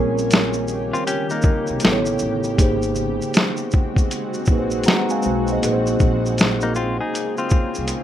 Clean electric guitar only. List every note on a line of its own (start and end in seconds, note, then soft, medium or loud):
0.93 1.07 C4 medium
0.93 1.06 F4 medium
1.07 1.30 C#4 medium
1.07 1.30 G4 medium
1.31 1.80 A#3 medium
1.31 1.80 D#4 medium
6.63 6.76 A#3 medium
6.63 6.76 D#4 medium
6.76 7.00 C4 medium
6.76 6.99 F4 loud
7.01 7.37 D#4 medium
7.01 7.37 G#4 medium
7.38 8.03 C4 medium
7.38 8.03 F4 medium